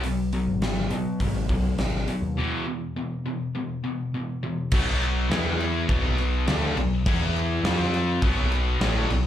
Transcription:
Already playing: B1
0.04 B2 F#3, open hi-hat
0.33 B2 F#3, open hi-hat
0.47 G#1
0.62 B2 F#3, snare, open hi-hat
0.90 B2 F#3, open hi-hat
1.20 G#1 B2 F#3, kick, open hi-hat
1.49 B1 B2 F#3, kick, open hi-hat
1.78 G#1 B2 F#3, snare, open hi-hat
2.08 B2 F#3, open hi-hat
2.22 D#2
2.37 E2 B2 E3
2.66 E2 B2
2.96 E2 B2
3.26 E2 B2
3.55 E2 B2
3.84 E2 B2
4.14 E2 B2
4.43 E2 B2
4.72 B1 B2 F#3 B3, kick, crash
5.02 crash
5.30 E2 E3 B3 E4, snare, crash
5.60 crash
5.89 B1 B2 F#3 B3, kick, crash
6.18 crash
6.47 D2 D3 A3 D4, snare, crash
6.76 B1 B2 F#3, crash
7.06 E2 E3 B3 E4, kick, crash
7.36 crash
7.63 F2 F3 C4 F4, snare, crash
7.94 crash
8.22 B1 B2 F#3 B3, kick, crash
8.52 crash
8.81 A1 A2 E3 A3, snare, crash
9.10 B1 B2 F#3, crash

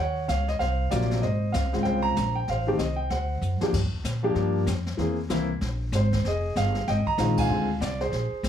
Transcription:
Already playing: D#2
0.00 C#5 F#5
0.28 C#2 F5, snare, hi-hat pedal
0.48 D#5, snare
0.59 C2 C5 F5, brush sweep, snare
0.91 A#1 C3 F#3 A#3 F4 D5, snare, hi-hat pedal
1.01 snare
1.11 snare
1.12 snare
1.22 G#1 C5 D#5, brush sweep, snare
1.52 C#2 F5, snare, hi-hat pedal
1.65 C2
1.73 G#1 C#3 G#3 C4 F4, snare
1.83 C2 C5 G5, brush sweep, snare
2.02 A#5
2.16 A#1, snare, hi-hat pedal
2.35 G5
2.48 A1 C5 F5, brush sweep, snare
2.67 D#3 A3 C4 G4
2.78 C2 D#5, snare, hi-hat pedal
2.96 G5
3.10 D2 C5 F#5, brush sweep, snare
3.41 F#2, hi-hat pedal
3.61 F3 A#3 D4 G4, muted upright bass stroke, snare
3.73 G2, brush sweep, kick, snare, crash
3.83 F2
3.93 D2
4.04 A#2, snare, hi-hat pedal
4.23 F3 A#3 D4 G4
4.35 G2, brush sweep, snare
4.67 F2, snare, hi-hat pedal
4.86 snare
4.97 E2 E3 A#3 C4 G#4, brush sweep, snare
5.29 C2 E3 A#3 C4 E4, snare, hi-hat pedal
5.61 A#1, brush sweep, snare
5.92 G#1 C5, snare, hi-hat pedal
6.12 kick, snare
6.24 F1 G#4 D#5, brush sweep, snare
6.56 G1 F5, snare, hi-hat pedal
6.75 snare
6.87 G#1 D#5 G5, brush sweep, snare
7.06 A#5, muted upright bass stroke, kick
7.18 A#1 D#3 G#3 C4 F4, snare, hi-hat pedal
7.37 F5 G#5, kick, crash
7.49 D2 D3 G#3 C4 F4, brush sweep
7.80 C2 D5, snare, hi-hat pedal
8.00 G#4 C5, snare
8.12 A#1, brush sweep, snare
8.32 muted upright bass stroke
8.43 D2, snare, hi-hat pedal

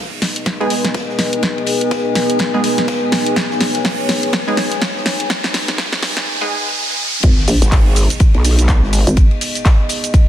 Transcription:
Already playing: B3 D#4 G#4 B4 D#5, riser
0.22 snare, open hi-hat, ride
0.36 closed hi-hat
0.46 kick, snare, closed hi-hat, ride
0.60 G#3 B3 D#4 G#4 G#5, ride
0.70 open hi-hat, ride
0.85 snare, closed hi-hat
0.94 kick, snare, closed hi-hat, ride
1.09 snare
1.19 snare, open hi-hat, ride
1.33 closed hi-hat
1.43 kick, snare, closed hi-hat, ride
1.58 ride
1.66 open hi-hat, ride
1.81 closed hi-hat, ride
1.91 kick, snare, closed hi-hat, ride
2.15 snare, open hi-hat, ride
2.30 closed hi-hat
2.39 kick, snare, closed hi-hat, ride
2.54 G#3 B3 D#4 G#4
2.64 open hi-hat, ride
2.78 snare, closed hi-hat
2.88 kick, snare, closed hi-hat, ride
3.12 snare, open hi-hat, ride
3.26 closed hi-hat, ride
3.36 C#5, kick, snare, closed hi-hat, ride
3.50 snare
3.60 snare, open hi-hat, ride
3.75 snare, closed hi-hat
3.85 kick, snare, closed hi-hat, open hi-hat
4.09 snare, open hi-hat, ride
4.23 closed hi-hat
4.33 kick, snare, closed hi-hat, ride
4.47 G#3 B3 D#4 G#4, ride
4.57 snare, open hi-hat, ride
4.72 snare, closed hi-hat
4.82 kick, snare, closed hi-hat, ride
4.96 snare
5.06 snare, open hi-hat, ride
5.20 closed hi-hat
5.30 kick, snare, closed hi-hat, ride
5.43 snare, ride
5.54 snare, open hi-hat, ride
5.68 snare, closed hi-hat, ride
5.78 kick, snare, closed hi-hat, ride
5.93 snare
6.03 snare, open hi-hat, ride
6.17 snare, closed hi-hat
6.41 G#3 B3 D#4 G#4
7.23 G#1 B3 G#4 D#5, kick, closed hi-hat, crash, ride, impact, shaker
7.38 snare
7.48 A#1, open hi-hat, ride, shaker
7.62 G#1, snare, closed hi-hat, shaker
7.72 kick, snare, clap, closed hi-hat, open hi-hat, shaker
7.96 open hi-hat, ride, shaker
8.10 closed hi-hat, shaker
8.20 kick, closed hi-hat, ride, shaker
8.34 B1, ride
8.45 open hi-hat, ride, shaker
8.59 snare, closed hi-hat, shaker
8.68 kick, snare, clap, closed hi-hat, ride, shaker
8.83 G#1, snare
8.93 snare, open hi-hat, ride, shaker
9.07 G#1, closed hi-hat, shaker
9.17 kick, closed hi-hat, ride, shaker
9.31 ride
9.41 open hi-hat, ride, shaker
9.55 closed hi-hat, ride, shaker
9.65 kick, snare, clap, closed hi-hat, ride, shaker
9.89 open hi-hat, ride, shaker
10.04 closed hi-hat, shaker
10.14 kick, closed hi-hat, ride, shaker

